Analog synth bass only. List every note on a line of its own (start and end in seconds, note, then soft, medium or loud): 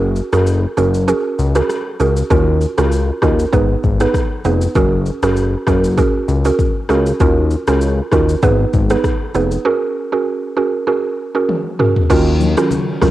0.00 0.21 F#1 loud
0.33 0.66 F#1 loud
0.78 1.13 F#1 loud
1.39 1.62 C#2 medium
2.00 2.23 C#2 medium
2.30 2.66 D#2 loud
2.78 3.11 C#2 medium
3.22 3.45 D#2 medium
3.53 3.76 G#1 loud
3.84 4.07 G#1 medium
4.45 4.68 F1 medium
4.75 5.11 F#1 loud
5.23 5.56 F#1 medium
5.67 6.03 F#1 medium
6.28 6.51 C#2 medium
6.90 7.13 C#2 medium
7.20 7.56 D#2 loud
7.68 8.01 C#2 loud
8.12 8.35 D#2 loud
8.43 8.66 G#1 loud
8.74 8.96 G#1 medium
9.35 9.57 F1 medium
12.10 12.56 D#2 loud
13.02 13.11 C#2 medium